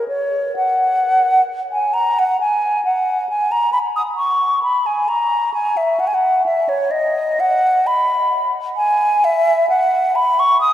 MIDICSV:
0, 0, Header, 1, 2, 480
1, 0, Start_track
1, 0, Tempo, 930233
1, 1230, Tempo, 900901
1, 1231, Time_signature, 4, 2, 24, 8
1, 2670, Tempo, 918836
1, 5620, End_track
2, 0, Start_track
2, 0, Title_t, "Flute"
2, 0, Program_c, 0, 73
2, 42, Note_on_c, 0, 73, 59
2, 282, Note_off_c, 0, 73, 0
2, 291, Note_on_c, 0, 78, 60
2, 729, Note_off_c, 0, 78, 0
2, 887, Note_on_c, 0, 80, 59
2, 1000, Note_on_c, 0, 82, 69
2, 1007, Note_off_c, 0, 80, 0
2, 1130, Note_on_c, 0, 78, 62
2, 1138, Note_off_c, 0, 82, 0
2, 1237, Note_off_c, 0, 78, 0
2, 1240, Note_on_c, 0, 80, 66
2, 1475, Note_off_c, 0, 80, 0
2, 1477, Note_on_c, 0, 78, 59
2, 1711, Note_off_c, 0, 78, 0
2, 1715, Note_on_c, 0, 80, 62
2, 1833, Note_on_c, 0, 82, 64
2, 1841, Note_off_c, 0, 80, 0
2, 1941, Note_off_c, 0, 82, 0
2, 1944, Note_on_c, 0, 83, 65
2, 1976, Note_off_c, 0, 83, 0
2, 2070, Note_on_c, 0, 87, 60
2, 2102, Note_off_c, 0, 87, 0
2, 2184, Note_on_c, 0, 85, 57
2, 2420, Note_off_c, 0, 85, 0
2, 2427, Note_on_c, 0, 83, 67
2, 2551, Note_on_c, 0, 80, 57
2, 2559, Note_off_c, 0, 83, 0
2, 2669, Note_on_c, 0, 82, 64
2, 2677, Note_off_c, 0, 80, 0
2, 2902, Note_off_c, 0, 82, 0
2, 2905, Note_on_c, 0, 80, 68
2, 3027, Note_on_c, 0, 76, 60
2, 3035, Note_off_c, 0, 80, 0
2, 3145, Note_on_c, 0, 78, 62
2, 3153, Note_off_c, 0, 76, 0
2, 3186, Note_on_c, 0, 80, 54
2, 3194, Note_off_c, 0, 78, 0
2, 3221, Note_on_c, 0, 78, 63
2, 3229, Note_off_c, 0, 80, 0
2, 3385, Note_off_c, 0, 78, 0
2, 3388, Note_on_c, 0, 76, 63
2, 3507, Note_on_c, 0, 73, 63
2, 3515, Note_off_c, 0, 76, 0
2, 3622, Note_on_c, 0, 75, 67
2, 3630, Note_off_c, 0, 73, 0
2, 3879, Note_on_c, 0, 78, 78
2, 3887, Note_off_c, 0, 75, 0
2, 4123, Note_on_c, 0, 83, 74
2, 4131, Note_off_c, 0, 78, 0
2, 4457, Note_off_c, 0, 83, 0
2, 4593, Note_on_c, 0, 80, 72
2, 4842, Note_on_c, 0, 76, 76
2, 4850, Note_off_c, 0, 80, 0
2, 5075, Note_off_c, 0, 76, 0
2, 5078, Note_on_c, 0, 78, 71
2, 5317, Note_on_c, 0, 83, 74
2, 5325, Note_off_c, 0, 78, 0
2, 5443, Note_on_c, 0, 85, 76
2, 5451, Note_off_c, 0, 83, 0
2, 5552, Note_off_c, 0, 85, 0
2, 5555, Note_on_c, 0, 87, 82
2, 5620, Note_off_c, 0, 87, 0
2, 5620, End_track
0, 0, End_of_file